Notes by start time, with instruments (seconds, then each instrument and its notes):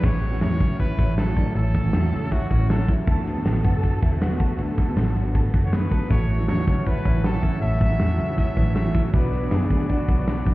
Already playing: clean electric guitar E3
0.02 picked electric bass A1, clean electric guitar A2, steel-string acoustic guitar E3 A3 C#4 F#4, trumpet C#5, kick, crash
0.23 clean electric guitar F#3, ride
0.31 steel-string acoustic guitar A2 E3 A3 C#4 F#4
0.41 picked electric bass E2, clean electric guitar E4, trumpet C#5, snare, ride
0.51 steel-string acoustic guitar A3 C#4 F#4
0.60 picked electric bass C#2, clean electric guitar C#4, kick, ride
0.79 steel-string acoustic guitar E3 A3 C#4 F#4, clean electric guitar E4, trumpet B4, kick, ride
0.98 picked electric bass A1, steel-string acoustic guitar A2 E3 A3 C#4 F#4, clean electric guitar C#4, kick, ride
1.18 clean electric guitar F#3, trumpet A4, snare, ride
1.27 steel-string acoustic guitar A2 E3 A3 C#4 F#4
1.37 clean electric guitar D4, kick, ride
1.46 clean electric guitar E4
1.55 picked electric bass A1, clean electric guitar A2, steel-string acoustic guitar E3 A3 C#4 F#4, trumpet A4, ride
1.75 clean electric guitar F#3, kick, ride
1.84 steel-string acoustic guitar A2 E3 A3 C#4 F#4
1.93 picked electric bass E2, clean electric guitar E4, snare, ride
2.02 steel-string acoustic guitar A3 C#4 F#4
2.13 picked electric bass C#2, clean electric guitar C#4, ride
2.31 steel-string acoustic guitar E3 A3 C#4 F#4, clean electric guitar E4, trumpet F#4, kick, ride
2.50 picked electric bass A1, steel-string acoustic guitar A2 E3 A3 C#4 F#4, clean electric guitar C#4, kick, ride
2.69 clean electric guitar F#3, trumpet A4, snare, ride
2.78 steel-string acoustic guitar A2 E3 A3 C#4 F#4
2.88 clean electric guitar E4, kick, ride
3.06 picked electric bass D2, steel-string acoustic guitar D3 A3 B3 F#4, clean electric guitar D3, violin section A4, kick, ride
3.26 clean electric guitar B3, snare, ride
3.35 steel-string acoustic guitar D3 A3 B3 F#4
3.45 picked electric bass A1, violin section A4, clean electric guitar A4, snare, ride
3.53 steel-string acoustic guitar A3 B3 F#4
3.64 picked electric bass F#1, clean electric guitar F#4, kick, ride
3.82 steel-string acoustic guitar D3 A3 B3 F#4, clean electric guitar A4, kick, ride
4.02 picked electric bass E1, steel-string acoustic guitar D3 A3 B3 F#4, clean electric guitar E4, kick, ride
4.12 clean electric guitar F#4
4.20 clean electric guitar B3, violin section F#4, snare, ride
4.30 steel-string acoustic guitar D3 A3 B3 F#4
4.40 clean electric guitar A4, kick, ride
4.58 picked electric bass D2, steel-string acoustic guitar D3 A3 B3 F#4, clean electric guitar D3, violin section A4, ride
4.78 clean electric guitar B3, kick, snare, ride
4.88 steel-string acoustic guitar D3 A3 B3 F#4
4.96 picked electric bass A1, clean electric guitar A4, snare, ride
5.06 steel-string acoustic guitar A3 B3 F#4
5.16 picked electric bass G#1, clean electric guitar F#4, ride
5.35 steel-string acoustic guitar D3 A3 B3 F#4, clean electric guitar A4, kick, ride
5.53 picked electric bass F#1, steel-string acoustic guitar D3 A3 B3 F#4, clean electric guitar F#4, kick, ride
5.66 trumpet C#5
5.73 clean electric guitar B3, trumpet B4, snare, ride
5.81 steel-string acoustic guitar D3 A3 B3 F#4
5.91 clean electric guitar A4, kick, open hi-hat, ride
6.09 picked electric bass A1, clean electric guitar A2, steel-string acoustic guitar E3 A3 C#4 F#4, transistor combo organ E4 F#4 A4 C#5, trumpet C#5, kick, hi-hat pedal, ride
6.30 clean electric guitar F#3, ride
6.38 steel-string acoustic guitar A2 E3 A3 C#4 F#4
6.48 picked electric bass E2, clean electric guitar D4, trumpet C#5, snare, ride
6.57 steel-string acoustic guitar A3 C#4 F#4, clean electric guitar E4
6.67 picked electric bass C#2, clean electric guitar C#4, trumpet C#5, kick, ride
6.85 steel-string acoustic guitar E3 A3 C#4 F#4, clean electric guitar E4, trumpet B4, kick, ride
7.04 picked electric bass A1, steel-string acoustic guitar A2 E3 A3 C#4 F#4, clean electric guitar C#4, kick, ride
7.24 clean electric guitar F#3, trumpet A4, snare, ride
7.32 steel-string acoustic guitar A2 E3 A3 C#4 F#4
7.43 clean electric guitar E4, kick, ride
7.61 picked electric bass A1, clean electric guitar A2, steel-string acoustic guitar E3 A3 C#4 F#4, trumpet E5, ride
7.81 clean electric guitar F#3, kick, snare, ride
7.89 steel-string acoustic guitar A2 E3 A3 C#4 F#4
8.00 picked electric bass E2, clean electric guitar E4, snare, ride
8.08 steel-string acoustic guitar A3 C#4 F#4
8.19 picked electric bass C#2, clean electric guitar C#4, ride
8.36 steel-string acoustic guitar E3 A3 C#4 F#4, clean electric guitar E4, trumpet E5, kick, ride
8.56 picked electric bass A1, steel-string acoustic guitar A2 E3 A3 C#4 F#4, clean electric guitar B3, kick, ride
8.66 clean electric guitar C#4
8.75 clean electric guitar F#3, trumpet E5, snare, ride
8.84 steel-string acoustic guitar A2 E3 A3 C#4 F#4
8.95 clean electric guitar E4, kick, ride
9.12 picked electric bass B1, clean electric guitar B2, steel-string acoustic guitar F#3 B3 D4 F#4, transistor combo organ D4 F#4 B4 D5, violin section B4, kick, ride
9.32 clean electric guitar F#3, snare, ride
9.42 steel-string acoustic guitar B2 F#3 B3 D4 F#4
9.51 picked electric bass F#1, clean electric guitar D4, violin section G#4, snare, ride
9.60 steel-string acoustic guitar B3 D4 F#4
9.70 picked electric bass D2, clean electric guitar A3, kick, ride
9.80 clean electric guitar B3
9.88 steel-string acoustic guitar F#3 B3 D4 F#4, clean electric guitar D4, violin section F#4, kick, ride
10.08 picked electric bass B1, steel-string acoustic guitar B2 F#3 B3 D4 F#4, clean electric guitar B3, kick, ride
10.28 clean electric guitar F#3, snare, ride
10.36 steel-string acoustic guitar B2 F#3 B3 D4 F#4
10.46 clean electric guitar D4, kick, ride